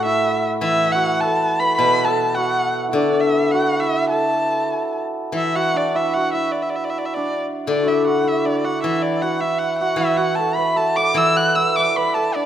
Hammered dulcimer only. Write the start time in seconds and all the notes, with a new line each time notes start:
Already playing: D4 F#4 A4
0.05 E4
0.64 E4
0.95 F#4
1.23 A4
1.60 B4
1.78 B4
2.08 A4
2.37 F#4
2.88 E4
2.96 D4
3.54 F#4
3.82 E4
4.12 A4
5.35 E4
5.55 F#4
5.74 D4
5.95 E4
6.15 F#4
6.34 E4
7.16 D4
7.70 D4
7.83 E4 F#4
8.06 F#4
8.24 E4
8.45 D4
8.64 F#4
8.83 E4
9.22 F#4
9.41 E4
9.81 F#4
10.00 E4
10.17 F#4
10.38 A4
10.57 B4
10.76 A4
10.97 D5
11.16 E5
11.36 F#5
11.57 E5
11.77 D5
11.97 B4
12.16 A4
12.36 D4